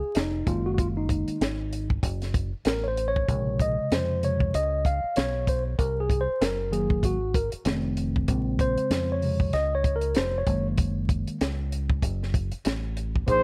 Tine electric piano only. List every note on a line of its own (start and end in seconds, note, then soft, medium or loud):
0.00 0.17 G#4 medium
0.17 0.49 D#4 medium
0.46 1.37 D#3 medium
0.46 1.37 G#3 soft
0.46 1.37 A#3 medium
0.46 0.67 F4 medium
0.66 0.70 F#4 medium
0.74 0.78 F#4 medium
0.79 0.87 F4 medium
0.97 1.87 D#4 medium
2.67 2.85 A#4 medium
2.84 2.87 C#5 medium
2.88 3.09 C5 medium
3.08 3.62 C#5 medium
3.29 4.19 C3 medium
3.29 4.18 C#3 medium
3.29 4.19 G#3 soft
3.62 3.93 D#5 medium
3.93 4.24 C5 medium
4.23 4.51 C3 medium
4.23 4.51 C#3 medium
4.23 4.51 G#3 soft
4.23 4.56 C#5 medium
4.55 4.86 D#5 loud
4.86 5.18 F5 loud
5.17 5.49 C#5 loud
5.49 5.63 C5 medium
5.79 6.00 A#4 medium
6.00 6.21 G#4 medium
6.21 6.42 C5 loud
6.41 6.70 A#4 medium
6.71 7.15 D#3 medium
6.71 7.16 F#3 soft
6.71 7.16 A#3 medium
6.71 7.05 G#4 medium
7.05 7.36 F#4 medium
7.35 7.49 A#4 medium
7.65 8.25 D#3 medium
7.65 8.25 A3 medium
7.65 8.26 C4 medium
8.28 9.18 C#3 medium
8.28 9.18 G#3 medium
8.28 9.19 C4 medium
8.61 9.14 C5 loud
9.12 9.55 C#5 medium
9.23 9.51 C3 medium
9.23 9.51 C#3 soft
9.23 9.51 G#3 soft
9.54 9.73 D#5 loud
9.75 9.96 C#5 loud
9.96 10.17 A#4 medium
10.17 10.38 C5 loud
10.38 10.67 C#5 medium
10.48 11.37 D#3 medium
10.48 11.38 G#3 soft
10.48 11.38 A#3 medium
13.27 13.43 F3 medium
13.27 13.43 A#3 medium
13.27 13.43 D#4 medium
13.27 13.43 G#4 medium